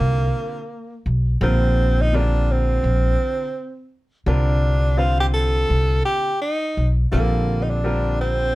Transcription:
Already playing: upright piano D3 G3 C4 F4 G4, tenor saxophone A#3
0.00 upright bass C2
1.06 upright bass B1
1.41 upright bass A#1, upright piano D3 G3 C4 F4 A#4, tenor saxophone C4
2.02 tenor saxophone D#4
2.13 upright piano C#3 G3 C4 F4 A#4, tenor saxophone D4
2.19 upright piano D3
2.52 tenor saxophone C4
2.84 upright bass A#1
4.26 upright bass C2, upright piano D3 G3 C4 F4 A#4, tenor saxophone D4
4.97 upright piano D3 G3 C4 F4 C5, tenor saxophone F4
5.20 tenor saxophone G4
5.34 tenor saxophone A4
5.70 upright bass C2
6.05 tenor saxophone G4
6.41 tenor saxophone D#4
6.77 upright bass B1
7.12 upright bass A#1, upright piano D3 G3 C4 F4 A4, tenor saxophone A#3
7.63 tenor saxophone D#4
7.70 tenor saxophone D4
7.84 upright piano D3 G3 C4 F4 A#4
8.21 tenor saxophone C4

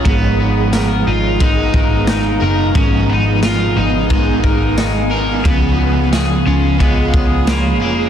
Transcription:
Already playing: clean electric guitar C#4 F4 G#4, ambient pad G#4
0.03 picked electric bass G#1, overdriven electric guitar G#2 F3 G#3 B3, clean electric guitar G#2, ambient pad B3 F5 A#5, electric slide guitar B3, kick, ride
0.08 overdriven electric guitar D#4 A#4
0.39 clean electric guitar B3
0.73 clean electric guitar A#4, snare, ride, tambourine
1.07 picked electric bass G#1, clean electric guitar D#4, electric slide guitar F4
1.39 overdriven electric guitar G#3 B3 D#4 A#4, clean electric guitar G#3, electric slide guitar D#4, kick, ride
1.74 picked electric bass G#1, clean electric guitar A#4, kick
2.07 clean electric guitar D#4, snare, ride, tambourine
2.40 picked electric bass F#1, overdriven electric guitar G#3 B3 D#4 A#4, clean electric guitar A#4
2.74 picked electric bass G#1, overdriven electric guitar G#2 F3 G#3 B3, clean electric guitar G#2, electric slide guitar C#4, ambient pad G#5, kick, ride
2.78 overdriven electric guitar D#4 A#4
3.09 clean electric guitar B3, electric slide guitar D#4
3.42 electric slide guitar F4, clean electric guitar A#4, snare, ride, tambourine
3.76 picked electric bass G#1, clean electric guitar D#4, electric slide guitar D#4
4.09 overdriven electric guitar G#3 B3 D#4 A#4, clean electric guitar G#3, kick, ride
4.44 picked electric bass G#1, clean electric guitar A#4, kick
4.77 clean electric guitar D#4, snare, ride, tambourine
5.10 overdriven electric guitar G#3 B3 D#4 A#4, clean electric guitar A#4
5.43 picked electric bass C#2, overdriven electric guitar C#3 F3 G#3 B3, clean electric guitar C#3, electric slide guitar B3, ambient pad G#4 C#5 B5, kick, ride
5.48 overdriven electric guitar F4 G#4
5.79 clean electric guitar B3
6.13 clean electric guitar G#4, snare, ride, tambourine
6.46 picked electric bass C#2, electric slide guitar C#4, clean electric guitar F4
6.78 overdriven electric guitar G#3 F4 G#4, clean electric guitar G#3, electric slide guitar B3, kick, ride
7.14 picked electric bass C#2, clean electric guitar G#4, kick
7.47 electric slide guitar A#3, clean electric guitar F4, snare, ride, tambourine
7.80 picked electric bass F1, overdriven electric guitar G#3 F4 G#4, electric slide guitar A#3, clean electric guitar G#4

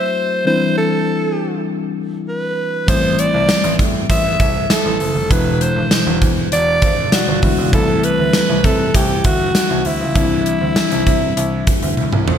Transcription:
Already playing: tine electric piano F#3 A3 C4 E4 F#4, alto saxophone C5
0.45 tine electric piano E3 G3 C4 D4 E4, alto saxophone C5
0.77 alto saxophone A4
2.29 alto saxophone B4
2.87 grand piano A1, tine electric piano E3 G3 A3 C4 E4, alto saxophone C5, kick, closed hi-hat
3.19 alto saxophone D5, closed hi-hat
3.34 grand piano C2
3.49 snare, closed hi-hat, tambourine
3.64 grand piano A1, closed hi-hat
3.79 grand piano A2, kick, closed hi-hat
4.10 grand piano A1, alto saxophone E5, kick, closed hi-hat
4.40 grand piano C2, kick, closed hi-hat
4.70 alto saxophone A4, snare, closed hi-hat, tambourine
4.85 grand piano A1
5.00 grand piano F#1, open hi-hat
5.15 grand piano F1
5.29 grand piano E1, tine electric piano B2 E3 G#3 D4 E4, alto saxophone B4, kick, closed hi-hat
5.61 alto saxophone C5, closed hi-hat
5.76 grand piano G#1
5.91 snare, closed hi-hat, tambourine
6.07 grand piano E1
6.22 grand piano E2, kick, closed hi-hat
6.52 grand piano E1, alto saxophone D5, closed hi-hat
6.82 grand piano G#1, kick, closed hi-hat
7.12 alto saxophone F#4, snare, closed hi-hat, tambourine
7.28 grand piano G1
7.42 grand piano D2, tine electric piano E3 G#3 B3 D4 E4, kick, open hi-hat
7.58 grand piano C#2
7.72 grand piano C2, tine electric piano E3 G3 A3 C4 E4, alto saxophone A4, kick, closed hi-hat
8.03 alto saxophone B4, closed hi-hat
8.19 grand piano D2
8.33 snare, closed hi-hat, tambourine
8.49 grand piano C2
8.64 grand piano C3, alto saxophone A4, kick, closed hi-hat
8.94 grand piano C2, alto saxophone G4, kick, closed hi-hat
9.24 grand piano D2, alto saxophone F#4, kick, closed hi-hat
9.55 snare, closed hi-hat, tambourine
9.70 grand piano C2
9.85 grand piano D2, alto saxophone E4, open hi-hat
10.01 grand piano C#2
10.15 grand piano C2, tine electric piano E3 G3 C4 D4 E4, kick, closed hi-hat
10.46 closed hi-hat
10.61 grand piano D2
10.76 snare, closed hi-hat, tambourine
10.91 grand piano C2, closed hi-hat
11.06 grand piano C3, kick, closed hi-hat
11.37 grand piano C2, closed hi-hat
11.67 kick, closed hi-hat
11.82 grand piano D2, closed hi-hat
11.97 high tom
12.13 grand piano C2, mid tom
12.28 grand piano A#1, mid tom

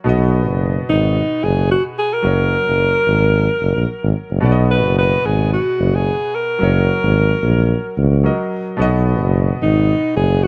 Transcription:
0.04 tuba B1, grand piano B2 B3 F#4
0.09 grand piano D#5
0.49 tuba F#1
0.88 tuba G#1, alto saxophone D#4
1.43 tuba F#1, alto saxophone G#4
1.71 alto saxophone F#4
1.98 alto saxophone G#4
2.13 alto saxophone A#4
2.22 tuba F#1, grand piano F#3 F#4 A#4
2.27 grand piano C#5
2.67 tuba F#1
3.06 tuba G#1
3.61 tuba F#1
3.76 tuba A#1
4.03 tuba G#1
4.30 tuba F#1
4.40 tuba B1, grand piano B2 B3 F#4
4.45 grand piano D5
4.52 grand piano D#5
4.71 alto saxophone B4
4.85 tuba F#1
4.98 alto saxophone B4
5.25 tuba G#1, alto saxophone G#4
5.53 alto saxophone F#4
5.79 tuba F#1
5.95 alto saxophone G#4
6.35 alto saxophone A#4
6.59 tuba F#1, grand piano F#3 F#4 A#4
6.64 grand piano C#5
7.03 tuba G#1
7.43 tuba A#1
7.97 tuba C#2
8.23 grand piano F#3 F#4 A#4 D#5
8.77 tuba B1, grand piano B2 B3 F#4
8.82 grand piano D#5
9.21 tuba F#1
9.61 tuba G#1, alto saxophone D#4
10.15 tuba F#1, alto saxophone G#4
10.44 alto saxophone F#4

